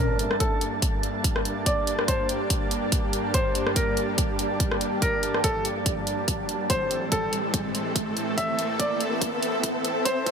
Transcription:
Already playing: A4 E5 A5
0.00 G2 G3 A#3 D4 G4 A#4, riser
0.07 D5
0.19 closed hi-hat
0.31 cross-stick
0.40 A4, kick, closed hi-hat
0.61 closed hi-hat
0.82 kick, closed hi-hat
1.03 closed hi-hat
1.24 kick, closed hi-hat
1.36 cross-stick
1.45 closed hi-hat
1.66 D5, kick, closed hi-hat
1.87 closed hi-hat
1.99 cross-stick
2.08 C5, kick, closed hi-hat
2.29 closed hi-hat
2.50 kick, closed hi-hat
2.71 closed hi-hat
2.92 kick, closed hi-hat
3.13 closed hi-hat
3.34 C5, kick, closed hi-hat
3.55 closed hi-hat
3.67 cross-stick
3.76 A#4, kick, closed hi-hat
3.97 closed hi-hat
4.18 kick, closed hi-hat
4.39 closed hi-hat
4.60 kick, closed hi-hat
4.72 cross-stick
4.81 closed hi-hat
5.02 A#4, kick, closed hi-hat
5.23 closed hi-hat
5.34 cross-stick
5.44 A4, kick, closed hi-hat
5.65 closed hi-hat
5.86 kick, closed hi-hat
6.07 closed hi-hat
6.28 kick, closed hi-hat
6.49 closed hi-hat
6.70 A2 E3 C4 A4 C5, kick, closed hi-hat
6.91 closed hi-hat
6.99 E5
7.12 A4, kick, closed hi-hat
7.33 closed hi-hat
7.54 kick, closed hi-hat
7.75 closed hi-hat
7.96 kick, closed hi-hat
8.17 closed hi-hat
8.38 E5, kick, closed hi-hat
8.59 closed hi-hat
8.79 D5, kick, closed hi-hat
9.01 closed hi-hat
9.21 kick, closed hi-hat
9.43 closed hi-hat
9.63 kick, closed hi-hat
9.85 closed hi-hat
10.05 C5, kick, closed hi-hat
10.26 kick, closed hi-hat

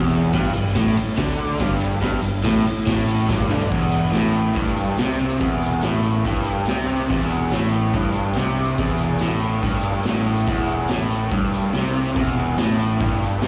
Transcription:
Already playing: E1 E2
0.12 ride
0.33 G1 G2, kick, snare, crash, tambourine
0.53 G1 G2, ride, tambourine
0.75 A1 A2, kick, snare, ride, tambourine
0.86 tambourine
0.97 muted picked electric bass stroke, muted overdriven electric guitar stroke, ride, tambourine
1.17 D2 D3, kick, snare, ride
1.27 tambourine
1.39 ride
1.49 tambourine
1.59 G1 G2, kick, snare, ride, tambourine
1.80 ride, tambourine
2.01 G1 G2, kick, snare, ride, tambourine
2.11 tambourine
2.22 G1 G2, ride, tambourine
2.44 A1 A2, kick, snare, ride, tambourine
2.54 tambourine
2.65 muted picked electric bass stroke, muted overdriven electric guitar stroke, ride
2.76 tambourine
2.87 A1 A2, kick, snare, ride, tambourine
2.96 tambourine
3.08 ride, tambourine
3.29 G1 G2, kick, snare, tambourine
3.39 high tom, tambourine
3.50 D2 D3, mid tom, tambourine
3.61 floor tom
3.70 E1 E2, kick, crash, tambourine
3.82 tambourine
3.92 tambourine
4.12 A1 A2, snare, tambourine, crash
4.32 tambourine
4.56 G1 G2, kick, crash
4.66 tambourine
4.77 tambourine
4.98 C2 C3, snare, tambourine, crash
5.09 tambourine
5.30 tambourine
5.40 E1 E2, kick, tambourine, crash
5.51 tambourine
5.61 tambourine
5.81 A1 A2, snare, tambourine, crash
5.93 tambourine
6.03 tambourine
6.25 G1 G2, kick, crash
6.35 tambourine
6.44 tambourine
6.56 tambourine
6.65 C2 C3, snare, tambourine, crash
6.76 tambourine
6.97 tambourine
7.08 E1 E2, kick, tambourine, crash
7.18 tambourine
7.28 tambourine
7.50 A1 A2, snare, tambourine, crash
7.61 tambourine
7.71 tambourine
7.94 G1 G2, kick, crash
8.02 tambourine
8.12 tambourine
8.23 tambourine
8.33 C2 C3, snare, tambourine, crash
8.44 tambourine
8.65 tambourine
8.76 E1 E2, kick, tambourine, crash
8.98 tambourine
9.09 tambourine
9.19 A1 A2, snare, tambourine, crash
9.29 tambourine
9.39 tambourine
9.61 G1 G2, kick, tambourine, crash
9.71 tambourine
9.82 tambourine
9.93 tambourine
10.03 A1 A2, snare, tambourine, crash
10.15 tambourine
10.26 tambourine
10.36 tambourine
10.48 E1 E2, kick, crash
10.57 tambourine
10.67 tambourine
10.88 A1 A2, snare, tambourine, crash
11.00 tambourine
11.11 tambourine
11.31 G1 G2, kick, crash
11.42 tambourine
11.54 tambourine
11.64 tambourine
11.73 C2 C3, snare, tambourine, crash
11.86 tambourine
12.06 tambourine
12.15 E1 E2, kick, tambourine, crash
12.27 tambourine
12.58 A1 A2, snare, tambourine, crash
12.68 tambourine
12.80 tambourine
13.00 G1 G2, kick, crash
13.13 tambourine
13.22 tambourine
13.33 tambourine
13.42 C2 C3, snare, tambourine, crash

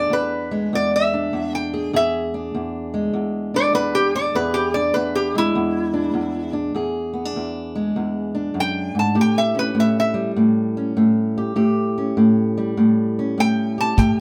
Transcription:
Already playing: D4 G#4 D5
0.10 E2 B4
0.51 G#3
0.73 E2 D5
0.96 E5
1.13 D4
1.33 E2
1.55 G5
1.74 G#4
1.93 E2 G#4 E5
2.34 D4
2.55 E2
2.94 G#3
3.13 E2
3.54 D4 D5
3.73 E2 B4
3.95 G4
4.15 D4 D5
4.35 E2 G#4 B4
4.54 G4
4.74 D4 D5
4.94 E2 B4
5.15 G4
5.35 G#3 E4
5.55 E2
5.94 D4
6.14 E2
6.53 D4
6.75 E2 G#4
7.13 B3
7.25 D4
7.36 E2
7.75 G#3
7.96 E2
8.35 D4
8.54 F#2
8.60 G5
8.95 G#2
8.99 A5
9.15 A2 G4
9.21 G5
9.38 E5
9.55 C#4
9.59 B4
9.75 A2
9.80 E5
10.00 E5
10.14 G3
10.36 A2
10.77 C#4
10.97 A2
11.38 G4
11.56 A2 G4
11.98 C#4
12.17 A2
12.58 G3
12.77 A2
13.19 C#4
13.38 A2 G5
13.78 G4 A5
13.97 A2 G4 G5, kick

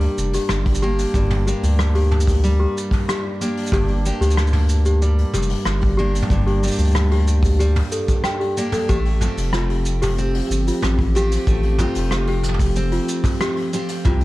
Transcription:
Already playing: G2 G3 A#3 D4 G4
0.01 open hi-hat
0.18 F1, shaker
0.33 G4, open hi-hat, shaker
0.49 G1, cross-stick, mid tom, shaker
0.66 kick, open hi-hat
0.75 shaker
0.82 A#3 D4 G4
0.98 open hi-hat, shaker
1.14 G1 G2, kick, shaker
1.30 mid tom, open hi-hat
1.46 A#3 D4 G4, shaker
1.63 D2, open hi-hat, shaker
1.79 cross-stick, shaker
1.95 G4, open hi-hat
2.11 mid tom
2.21 shaker
2.27 kick, open hi-hat, shaker
2.33 open hi-hat
2.38 open hi-hat
2.44 G3, open hi-hat, shaker
2.49 open hi-hat
2.54 open hi-hat
2.60 G4
2.78 shaker
2.91 kick, mid tom, open hi-hat
3.08 G4, cross-stick, shaker
3.41 A#3 D4 G4, shaker
3.57 open hi-hat
3.63 open hi-hat, shaker
3.68 open hi-hat
3.72 G1 G2 G4, kick, mid tom, shaker
3.78 open hi-hat
3.84 open hi-hat
3.88 open hi-hat
4.06 A#3 D4 G4, shaker
4.21 D2 G4, open hi-hat, shaker
4.31 shaker
4.37 cross-stick, shaker
4.47 shaker
4.53 mid tom, open hi-hat
4.69 shaker
4.85 G4, shaker
5.02 G3, shaker
5.18 open hi-hat
5.33 F1 G4, mid tom, shaker
5.42 shaker
5.50 open hi-hat
5.65 G1, cross-stick, shaker
5.81 kick, open hi-hat
5.97 A#3 D4 G4
6.15 open hi-hat, shaker
6.22 mid tom
6.30 G1 G2, kick, shaker
6.47 G4, open hi-hat
6.63 A#3 D4 G4, cross-stick, shaker
6.67 shaker
6.71 shaker
6.75 D2, shaker
6.79 shaker
6.83 open hi-hat, shaker
6.87 shaker
6.91 cross-stick, mid tom, shaker
6.96 shaker
7.11 G4, open hi-hat
7.28 shaker
7.43 kick, open hi-hat, shaker
7.60 G3 G4, shaker
7.76 mid tom, open hi-hat
7.92 A4, shaker
8.08 kick, shaker
8.24 G5, cross-stick, shaker
8.40 G4, open hi-hat
8.57 A#3 D4 G4, shaker
8.72 A4, mid tom, open hi-hat, shaker
8.89 A1 F3 A3 G4, kick, shaker
9.05 open hi-hat
9.21 C4 F4 G4, mid tom, shaker
9.33 G4
9.37 F1, open hi-hat, shaker
9.50 C4, cross-stick
9.54 F4, shaker
9.70 open hi-hat
9.86 shaker
10.02 G4, mid tom, open hi-hat, shaker
10.18 C4, shaker
10.34 open hi-hat
10.50 G1, shaker
10.67 F4, open hi-hat, shaker
10.82 A1, cross-stick, mid tom, shaker
10.99 kick, open hi-hat
11.15 C4 F4 G4, shaker
11.31 open hi-hat, shaker
11.47 A1 A3, kick, shaker
11.63 open hi-hat
11.78 C4 F4 G4, mid tom, shaker
11.95 F1, open hi-hat, shaker
12.11 cross-stick, shaker
12.27 G4, open hi-hat
12.43 mid tom, shaker
12.48 mid tom
12.54 mid tom
12.59 kick, open hi-hat, shaker
12.76 C4, shaker
12.92 F4, open hi-hat
13.09 shaker
13.24 kick, mid tom, open hi-hat, shaker
13.41 G4, cross-stick, shaker
13.56 open hi-hat
13.62 open hi-hat
13.67 open hi-hat
13.73 C4 F4 G4, open hi-hat, shaker
13.78 open hi-hat
13.84 open hi-hat
13.89 open hi-hat, shaker
14.05 C2 C3 F4, kick, mid tom, shaker
14.21 open hi-hat

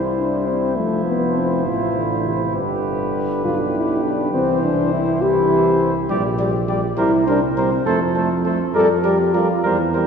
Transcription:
Already playing: C2 G3 E4 C5
0.17 D4
0.47 C4
0.77 F1 F3 A3 C5
1.06 B3
1.37 C4
1.67 A1 E3 F4
1.97 D3
2.27 C3
2.56 G1 D3 G4 B4
3.45 B1 F4 G4
3.74 E4
4.03 D4
4.33 C2 E3 C4 C5
4.63 D4
4.92 E4
5.22 E3 E4 G4 C5
6.10 A#1 G3 G4 D5
6.39 G3 G4 D5
6.68 G3 G4 D5
6.97 C2 G3 E4 A#4 C5
7.27 G3 D4 A#4 C5
7.57 G3 C4 A#4 C5
7.85 F2 A3 A4 C5
8.15 A3 A4 C5
8.45 A3 A4 C5
8.74 F2 G3 A4 A#4 D5
9.03 G3 G4 A#4 D5
9.34 G3 F4 A#4 D5
9.63 E2 G3 A#4 C5
9.94 G3 A#4 C5

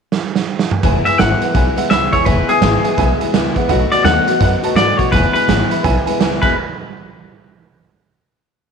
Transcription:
0.12 snare
0.36 snare
0.59 snare
0.71 mid tom
0.83 E1 E2 B2 E3 G#3 B3 E4 B4 E5 G#5, kick, closed hi-hat
1.05 E3 G#3 B3 E4 B4 E5 G#5, muted upright bass stroke, snare, closed hi-hat
1.18 G#1 E2 B2 E3 G#3 B3 E4 B4 E5 F#5, snare, closed hi-hat
1.41 E3 G#3 B3 E4 B4 E5 F#5, muted upright bass stroke, closed hi-hat
1.54 B1 E3 G#3 B3 E4 B4 E5 G#5, kick, closed hi-hat
1.76 E3 G#3 B3 E4 B4 E5 F#5, muted upright bass stroke, closed hi-hat
1.90 C#2 E2 B2 E3 G#3 B3 E4 B4 E5 B5, snare, closed hi-hat
2.12 E2 E3 G#3 B3 E4 B4 C#5 E5 G#5, kick, closed hi-hat
2.25 E1 E2 B2 E3 G#3 B3 E4 B4 E5 G#5, kick, closed hi-hat
2.47 E3 G#3 B3 E4 G#4 B4 E5 G#5, muted upright bass stroke, closed hi-hat
2.61 G#1 E2 B2 E3 G#3 B3 E4 B4 E5 G#5, snare, closed hi-hat
2.83 E3 G#3 B3 E4 B4 E5 G#5, muted upright bass stroke, closed hi-hat
2.97 B1 E3 G#3 B3 E4 B4 E5 G#5, kick, closed hi-hat
3.19 G#3 B3 E4 B4 E5 G#5, muted upright bass stroke, closed hi-hat
3.24 E3
3.32 C#2 E2 B2 E3 G#3 B3 E4 B4 E5 G#5, snare, closed hi-hat
3.55 A#1 E3 G#3 B3 E4 B4 E5 F#5, kick, closed hi-hat
3.68 B1 B2 D#3 A3 B3 F#4 B4 D#5 F#5, kick, closed hi-hat
3.91 A3 B3 F#4 B4 D5 F#5, muted upright bass stroke, snare, closed hi-hat
4.04 D#2 B2 D#3 A3 B3 F#4 B4 F#5, snare, closed hi-hat
4.26 B3 F#4 B4 D#5 F#5, muted upright bass stroke, closed hi-hat
4.30 A3
4.40 F#2 D#3 A3 B3 F#4 B4 D#5 F#5, kick, snare, closed hi-hat
4.62 A3 B3 F#4 B4 D#5 A5, muted upright bass stroke, closed hi-hat
4.75 G#2 B2 D#3 A3 B3 F#4 B4 D5 F#5, snare, closed hi-hat
4.97 B2 A3 B3 F#4 B4 C#5 D#5 F#5, kick, closed hi-hat
5.12 E1 E2 B2 E3 G#3 B3 E4 B4 E5 G#5, kick, snare, closed hi-hat
5.33 E3 G#3 B3 E4 B4 E5 G#5, muted upright bass stroke, closed hi-hat
5.48 G#1 E2 B2 E3 G#3 B3 E4 B4 E5 G#5, snare, closed hi-hat
5.69 E3 G#3 B3 E4 B4 E5 B5, muted upright bass stroke, closed hi-hat
5.83 B1 E3 G#3 B3 E4 B4 E5 G#5, kick, closed hi-hat
6.05 B3 E4 B4 E5 G#5, muted upright bass stroke, closed hi-hat
6.09 E3 G#3
6.19 C#2 E2 B2 E3 G#3 B3 E4 B4 E5 G#5, snare, closed hi-hat
6.41 E1 E2 B2 E3 G#3 B3 E4 B4 E5 G#5, kick, crash

